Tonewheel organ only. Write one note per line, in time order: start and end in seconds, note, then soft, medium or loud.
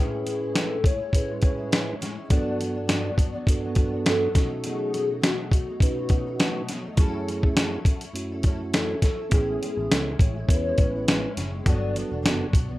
0.00 0.77 A2 medium
0.00 0.78 C#4 medium
0.00 0.78 E4 medium
0.00 0.78 G#4 medium
0.00 0.79 B4 medium
1.13 1.94 A2 medium
1.13 1.95 C#4 medium
1.13 1.95 E4 medium
1.13 1.95 G#4 medium
1.13 1.96 B4 medium
2.29 3.11 G2 medium
2.29 3.11 B3 medium
2.29 3.12 D4 medium
2.29 3.12 F#4 medium
2.29 3.12 A4 medium
3.47 4.28 G2 medium
3.47 4.28 B3 medium
3.47 4.29 D4 medium
3.47 4.29 F#4 medium
3.47 4.30 A4 medium
4.34 5.29 B2 medium
4.34 5.29 C#4 medium
4.34 5.30 D#4 medium
4.34 5.30 F#4 medium
4.34 5.30 A4 medium
5.81 6.62 B2 medium
5.81 6.62 C#4 medium
5.81 6.63 D#4 medium
5.81 6.63 F#4 medium
5.81 6.63 B4 medium
6.96 7.78 F#2 medium
6.96 7.78 A3 medium
6.96 7.79 C#4 medium
6.96 7.79 E4 medium
6.96 7.79 G#4 medium
8.13 8.95 F#2 medium
8.13 8.95 A3 medium
8.13 8.96 C#4 medium
8.13 8.96 E4 medium
8.13 8.96 F#4 medium
9.30 10.12 B3 medium
9.30 10.12 C#4 medium
9.30 10.12 E4 medium
9.30 10.13 G#4 medium
10.47 11.29 B3 medium
10.47 11.29 C#4 medium
10.47 11.30 E4 medium
10.47 10.56 A#4 medium
10.56 11.33 B4 medium
11.64 12.46 B3 medium
11.64 12.46 D4 medium
11.64 12.47 F#4 medium
11.64 12.47 A4 medium